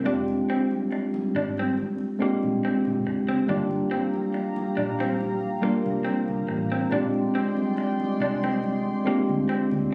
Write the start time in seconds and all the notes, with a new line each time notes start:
0.04 F1 G#3 C4 D4 F4 G4, muted conga, low conga
0.28 muted conga
0.50 C4
0.71 high conga
0.91 muted clean electric guitar stroke, muted conga
1.14 muted conga, high conga
1.35 G#1 D4
1.57 C4, high conga
1.77 high conga
1.98 muted conga
2.19 G#3 A#3 C4 D4 F4 G4, muted fingered electric bass stroke
2.43 A#1, high conga
2.65 C4
2.85 A#1, muted conga, low conga
3.06 F#1, muted clean electric guitar stroke
3.29 C4
3.47 G1 G3 A#3 D4 F4 G4 F5 A#5, low conga
3.71 muted conga
3.91 C4
4.14 high conga
4.34 muted clean electric guitar stroke, muted conga
4.56 muted conga, high conga
4.77 A#1 D4
5.00 C4, high conga
5.21 muted conga, high conga
5.41 muted conga
5.62 G3 A#3 D4 F4 A#4, muted fingered electric bass stroke
5.86 C2, high conga
6.05 C4, muted conga
6.28 C2, low conga
6.49 A1, muted clean electric guitar stroke
6.72 C4
6.90 A#1 G#3 C4 D4 F4 G4 D5 G5 C6, low conga
7.14 muted conga
7.35 C4
7.57 high conga
7.77 muted clean electric guitar stroke, muted conga
8.00 high conga
8.20 C2 D4
8.43 C4, high conga
8.64 muted conga, high conga
9.05 G#3 A#3 C4 D4 F4 G4, muted fingered electric bass stroke
9.29 D2, high conga
9.49 C4, muted conga
9.71 D2, muted conga, low conga